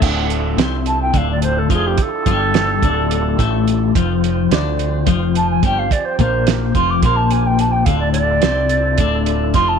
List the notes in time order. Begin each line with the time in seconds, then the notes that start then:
0.02 D1 D2 D3 D4 E4 F4 A4, kick, crash
0.30 closed hi-hat
0.57 C2 C3 C4, snare, closed hi-hat
0.86 A5, closed hi-hat
1.02 G5
1.13 D1 D2 D3 F5, kick, closed hi-hat
1.31 D5
1.42 C5, closed hi-hat
1.58 A4
1.69 F1 F2 F3 G#4, kick, closed hi-hat
1.86 G4
1.98 G4, kick, closed hi-hat
2.02 A4
2.26 G1 G2 G3, kick, closed hi-hat
2.54 snare, closed hi-hat
2.82 D1 D2 D3, kick, closed hi-hat
3.11 closed hi-hat
3.39 A1 A2 A3, kick, closed hi-hat
3.68 closed hi-hat
3.95 F1 F2 F3 C4 C5, kick, closed hi-hat
4.24 closed hi-hat
4.51 D2 D3 D4, snare, closed hi-hat
4.79 closed hi-hat
5.06 F1 F2 F3, kick, closed hi-hat
5.35 A5, closed hi-hat
5.50 G#5
5.63 G1 G2 G3 G5, kick, closed hi-hat
5.78 F5
5.91 G4 D5, kick, closed hi-hat
6.05 C5
6.19 A#1 A#2 A#3 C5, kick, closed hi-hat
6.47 snare, closed hi-hat
6.75 F1 F2 F3 C6, kick, closed hi-hat
6.90 D6
7.02 A#1 A#2 A#3 C6, kick, closed hi-hat
7.16 A5
7.31 G#5, closed hi-hat
7.46 G5
7.59 A5, closed hi-hat
7.71 G5
7.84 D1 D2 D3 D4 E4 F4 A4 F5, kick, closed hi-hat
7.99 D5
8.12 D5, closed hi-hat
8.42 C2 C3 C4, snare, closed hi-hat
8.69 closed hi-hat
8.98 D1 D2 D3, kick, closed hi-hat
9.26 closed hi-hat
9.54 F1 F2 F3 C6, kick, snare, closed hi-hat
9.68 A5